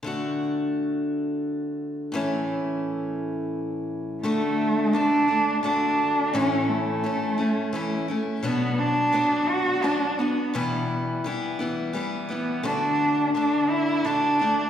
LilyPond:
<<
  \new Staff \with { instrumentName = "Cello" } { \time 3/4 \key d \major \tempo 4 = 86 r2. | r2. | a4 d'4 d'4 | cis'8 a2 r8 |
b8 d'4 fis'8 d'8 b8~ | b8 r2 b8 | d'4 d'8 e'8 d'4 | }
  \new Staff \with { instrumentName = "Steel-string acoustic guitar" } { \time 3/4 \key d \major <d a d' fis'>2. | <a, e a cis' e'>2. | <d a d' fis'>4 <d a d' fis'>8 <a d' fis'>8 <d a d' fis'>4 | <a, e a cis' e'>4 <e a cis' e'>8 <a cis' e'>8 <e a cis' e'>8 <a cis' e'>8 |
<b, fis b d' fis'>4 <fis b d' fis'>4 <fis b d' fis'>8 <b d' fis'>8 | <e, b, e g b e'>4 <e g b e'>8 <e g b e'>8 <e g b e'>8 <e g b e'>8 | <d a d' fis'>4 <d a d' fis'>4 <d a d' fis'>8 <a d' fis'>8 | }
>>